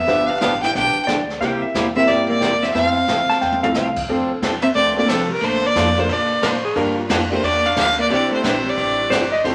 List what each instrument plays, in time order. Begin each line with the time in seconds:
Already playing: hollow-body jazz guitar B3, fiddle E5
0.07 upright bass G1, steel-string acoustic guitar D3 F3 B3 D4 G4, honky-tonk piano B3 D4 F4 G4 B4, brush sweep, kick, snare
0.28 hollow-body jazz guitar D4, fiddle F5
0.39 upright bass A1, steel-string acoustic guitar D3 F3 B3 D4 G4, hollow-body jazz guitar D4, fiddle F5, kick, snare, hi-hat pedal
0.63 hollow-body jazz guitar E4, fiddle G5, snare
0.74 upright bass B1, steel-string acoustic guitar D3 F3 B3 D4 G4, hollow-body jazz guitar D4, fiddle G5, brush sweep, kick, snare
0.96 muted upright bass stroke
1.07 upright bass D2, steel-string acoustic guitar D3 F3 B3 D4 G4, electric slide guitar D5, kick, snare, hi-hat pedal
1.30 snare
1.40 upright bass C2, steel-string acoustic guitar C3 G3 A#3 E4 G4, honky-tonk piano A#3 C4 E4 G4 A#4, electric slide guitar G5, brush sweep, kick, snare
1.62 electric slide guitar E5, muted upright bass stroke
1.74 upright bass E2, steel-string acoustic guitar C3 G3 A#3 E4 G4, kick, snare, hi-hat pedal
1.95 honky-tonk piano A#3 C4 E4 G4 A#4, hollow-body jazz guitar C4, fiddle E5
2.08 upright bass G2, steel-string acoustic guitar C3 G3 A#3 E4 G4, hollow-body jazz guitar A#3, fiddle D5, brush sweep, kick, snare
2.28 hollow-body jazz guitar A#3, fiddle D5
2.40 upright bass E2, steel-string acoustic guitar C3 G3 A#3 E4 G4, kick, snare, hi-hat pedal
2.62 hollow-body jazz guitar C4, fiddle E5, snare
2.74 upright bass F2, steel-string acoustic guitar F3 A3 C4 E4 A4, hollow-body jazz guitar C4, fiddle F5, brush sweep, kick, snare
3.08 upright bass D2, steel-string acoustic guitar F3 A3 C4 E4 A4, kick, snare, hi-hat pedal
3.30 electric slide guitar A5, muted upright bass stroke, snare
3.41 upright bass E2, steel-string acoustic guitar F3 A3 C4 E4 A4, electric slide guitar G5, snare
3.52 high tom
3.62 honky-tonk piano A3 C4 E4 F4 A4, electric slide guitar F5, high tom
3.74 upright bass C2, steel-string acoustic guitar F3 A3 C4 E4 A4, electric slide guitar F5, snare, hi-hat pedal
3.96 kick, crash
4.08 upright bass F2, steel-string acoustic guitar F3 C4 D4 A4, honky-tonk piano A3 C4 D4 F4 A4, kick
4.30 muted upright bass stroke
4.42 upright bass E2, steel-string acoustic guitar F3 C4 D4 A4, kick, snare, hi-hat pedal, ride
4.62 hollow-body jazz guitar C4, fiddle E5, ride
4.75 upright bass D2, steel-string acoustic guitar F3 C4 D4 A4, hollow-body jazz guitar A3, fiddle D5, kick, ride
4.96 honky-tonk piano A3 C4 D4 F4 A4, hollow-body jazz guitar A#3, fiddle D5
5.09 upright bass C2, hollow-body jazz guitar F3, steel-string acoustic guitar F3 C4 D4 A4, fiddle A4, kick, snare, hi-hat pedal, ride
5.29 hollow-body jazz guitar G3, fiddle A#4
5.41 upright bass A#1, steel-string acoustic guitar D3 F3 A#3 D4 A4, hollow-body jazz guitar A3, fiddle C5, kick, ride
5.63 hollow-body jazz guitar A#3, fiddle D5
5.75 upright bass F2, steel-string acoustic guitar D3 F3 A#3 D4 A4, kick, snare, hi-hat pedal, ride
5.97 hollow-body jazz guitar A3, honky-tonk piano A#3 D4 F4 A4 A#4, fiddle C5, ride
6.09 upright bass A#2, steel-string acoustic guitar D3 F3 A#3 D4 A4, hollow-body jazz guitar A#3, fiddle D5, kick, ride
6.42 upright bass A2, steel-string acoustic guitar D3 F3 A#3 D4 A4, electric slide guitar C5, kick, snare, hi-hat pedal, ride
6.64 electric slide guitar G#4, ride
6.75 upright bass G2, steel-string acoustic guitar D3 F3 A#3 D4 G4, honky-tonk piano A#3 D4 F4 G4 A#4, electric slide guitar A#4, kick, ride
6.98 electric slide guitar F4
7.09 upright bass F2, steel-string acoustic guitar D3 F3 A#3 D4 G4, kick, snare, hi-hat pedal, ride
7.30 hollow-body jazz guitar A3, honky-tonk piano A#3 D4 F4 G4 A#4, ride
7.34 fiddle C5
7.42 upright bass E2, steel-string acoustic guitar D3 F3 A#3 D4 G4, hollow-body jazz guitar A#3, fiddle D5, kick, ride
7.66 hollow-body jazz guitar D4, fiddle F5
7.76 upright bass D2, steel-string acoustic guitar D3 F3 A#3 D4 G4, hollow-body jazz guitar D4, fiddle F5, kick, snare, hi-hat pedal, ride
7.98 hollow-body jazz guitar A#3, fiddle D5, ride
8.09 upright bass C2, steel-string acoustic guitar C3 E3 D4 G4, hollow-body jazz guitar G3, honky-tonk piano C4 D4 E4 G4 C5, fiddle D5, kick, ride
8.32 hollow-body jazz guitar A3, fiddle C5, muted upright bass stroke
8.43 upright bass A#1, steel-string acoustic guitar C3 E3 D4 G4, hollow-body jazz guitar G3, fiddle C5, kick, snare, hi-hat pedal, ride
8.66 hollow-body jazz guitar G3, fiddle D5
8.76 upright bass A1, steel-string acoustic guitar C3 E3 D4 G4, kick, ride
9.10 upright bass G1, steel-string acoustic guitar C3 E3 D4 G4, electric slide guitar C5, kick, snare, hi-hat pedal, ride
9.32 electric slide guitar D#5, ride
9.44 upright bass F1, steel-string acoustic guitar F3 A3 C4 E4 A4, honky-tonk piano C4 E4 F4 A4 C5, electric slide guitar C5, kick, ride